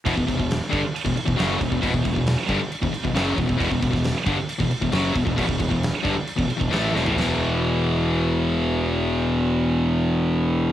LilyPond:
<<
  \new Staff \with { instrumentName = "Distorted electric guitar" } { \clef bass \time 4/4 \key e \minor \tempo 4 = 134 <e, b,>16 <e, b,>16 <e, b,>16 <e, b,>8 r16 <g, d>16 r8 <e, b,>16 r16 <e, b,>16 <fis, cis fis>8 <e, b,>16 <e, b,>16 | <e, b,>16 <e, b,>16 <e, b,>16 <e, b,>8 r16 <g, d>16 r8 <e, b,>16 r16 <e, b,>16 <fis, cis fis>8 <e, b,>16 <e, b,>16 | <e, b,>16 <e, b,>16 <e, b,>16 <e, b,>8 r16 <g, d>16 r8 <e, b,>16 r16 <e, b,>16 <fis, cis fis>8 <e, b,>16 <e, b,>16 | <e, b,>16 <e, b,>16 <e, b,>16 <e, b,>8 r16 <g, d>16 r8 <e, b,>16 r16 <e, b,>16 <a, e a>8 <e, b,>16 <a, e>16 |
<e, b, e>1~ | <e, b, e>1 | }
  \new Staff \with { instrumentName = "Distorted electric guitar" } { \clef bass \time 4/4 \key e \minor <e, b,>16 <e, b,>16 <e, b,>16 <e, b,>8 r16 <g, d>16 r8 <e, b,>16 r16 <e, b,>16 <fis, cis fis>8 <e, b,>16 <e, b,>16 | <e, b,>16 <e, b,>16 <e, b,>16 <e, b,>8 r16 <g, d>16 r8 <e, b,>16 r16 <e, b,>16 <fis, cis fis>8 <e, b,>16 <e, b,>16 | <e, b,>16 <e, b,>16 <e, b,>16 <e, b,>8 r16 <g, d>16 r8 <e, b,>16 r16 <e, b,>16 <fis, cis fis>8 <e, b,>16 <e, b,>16 | <e, b,>16 <e, b,>16 <e, b,>16 <e, b,>8 r16 <g, d>16 r8 <e, b,>16 r16 <e, b,>16 <a, e a>8 <e, b,>16 <a, e>16 |
<e, b, e>1~ | <e, b, e>1 | }
  \new Staff \with { instrumentName = "Fingered electric bass" } { \clef bass \time 4/4 \key e \minor e,,16 e,,16 e,,16 e,,8 r16 g,,16 r8 e,,16 r16 e,,16 fis,,8 e,,16 e,,16 | e,,16 e,,16 e,,16 e,,8 r16 g,,16 r8 e,,16 r16 e,,16 fis,,8 e,,16 e,,16 | e,,16 e,,16 e,,16 e,,8 r16 g,,16 r8 e,,16 r16 e,,16 fis,,8 e,,16 e,,16 | e,,16 e,,16 e,,16 e,,8 r16 g,,16 r8 e,,16 r16 e,,16 a,,8 e,,16 a,,16 |
e,,1~ | e,,1 | }
  \new DrumStaff \with { instrumentName = "Drums" } \drummode { \time 4/4 <cymc bd>16 bd16 <cymc bd>16 bd16 <cymc sn>8 <cymc bd>8 cymc16 bd16 cymc16 bd16 <cymc sn>8 <cymc bd>16 bd16 | <cymc bd>16 bd16 <cymc bd>16 bd16 <cymc sn>8 <cymc bd>8 cymc16 bd16 cymc16 bd16 <cymc sn>8 <cymc bd>16 bd16 | <cymc bd>16 bd16 <cymc bd>16 <bd sn>16 <cymc sn>8 <cymc bd>8 cymc16 bd16 cymc16 bd16 <cymc sn>8 <cymc bd>16 bd16 | <cymc bd>16 bd16 <cymc bd>16 bd16 <cymc sn>8 <cymc bd>8 cymc16 bd16 cymc16 bd16 <cymc sn>8 sn16 tomfh16 |
<cymc sn>4 r4 r4 r4 | r4 r4 r4 r4 | }
>>